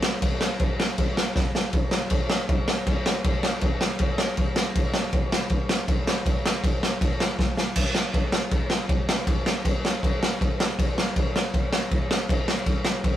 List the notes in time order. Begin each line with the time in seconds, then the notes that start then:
0.03 snare
0.22 kick, crash
0.41 snare
0.60 kick, crash
0.80 snare
0.98 kick, crash
1.17 snare
1.36 kick, snare
1.55 snare
1.73 kick, crash
1.91 snare
2.10 kick, crash
2.30 snare
2.49 kick, crash
2.68 snare
2.87 kick, crash
3.06 snare
3.24 kick, crash
3.43 snare
3.61 kick, crash
3.81 snare
3.99 kick, crash
4.18 snare
4.37 kick, crash
4.56 snare
4.75 kick, crash
4.94 snare
5.13 kick, crash
5.32 snare
5.50 kick, crash
5.69 snare
5.88 kick, crash
6.07 snare
6.26 kick, crash
6.46 snare
6.64 kick, crash
6.83 snare
7.01 kick, crash
7.20 snare
7.39 kick, snare
7.57 snare
7.76 kick, crash
7.95 snare
8.14 kick, crash
8.32 snare
8.51 kick, crash
8.70 snare
8.89 kick, crash
9.09 snare
9.27 kick, crash
9.46 snare
9.65 kick, crash
9.85 snare
10.03 kick, crash
10.23 snare
10.41 kick, crash
10.60 snare
10.79 kick, crash
10.98 snare
11.16 kick, crash
11.36 snare
11.54 kick, crash
11.73 snare
11.91 kick, crash
12.11 snare
12.29 kick, crash
12.48 snare
12.66 kick, crash
12.85 snare
13.04 kick, crash